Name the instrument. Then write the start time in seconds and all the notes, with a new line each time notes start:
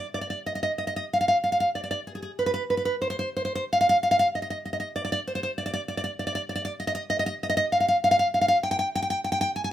nylon-string guitar
0.14 D5
0.21 D5
0.30 D5
0.46 D#5
0.55 D#5
0.63 D#5
0.78 D#5
0.87 D#5
0.96 D#5
1.13 F5
1.21 F5
1.28 F5
1.44 F5
1.52 F5
1.60 F5
1.75 D5
1.84 D5
1.91 D5
2.07 G#4
2.15 G#4
2.22 G#4
2.39 B4
2.46 B4
2.54 B4
2.70 B4
2.77 B4
2.85 B4
3.02 C5
3.10 C5
3.19 C5
3.37 C5
3.45 C5
3.55 C5
3.73 F5
3.81 F5
3.89 F5
4.03 F5
4.11 F5
4.19 F5
4.35 D#5
4.42 D#5
4.50 D#5
4.65 D#5
4.73 D#5
4.80 D#5
4.96 D5
5.05 D5
5.12 D5
5.27 C5
5.35 C5
5.43 C5
5.58 D5
5.66 D5
5.74 D5
5.88 D5
5.97 D5
6.04 D5
6.19 D5
6.27 D5
6.35 D5
6.49 D5
6.56 D5
6.65 D5
6.80 D#5
6.87 D#5
6.95 D#5
7.10 D#5
7.19 D#5
7.26 D#5
7.43 D#5
7.50 D#5
7.57 D#5
7.72 F5
7.80 F5
7.88 F5
8.04 F5
8.11 F5
8.19 F5
8.34 F5
8.41 F5
8.48 F5
8.63 G5
8.71 G5
8.79 G5
8.95 G5
9.02 G5
9.10 G5
9.24 G5
9.32 G5
9.41 G5
9.56 G#5
9.64 G#5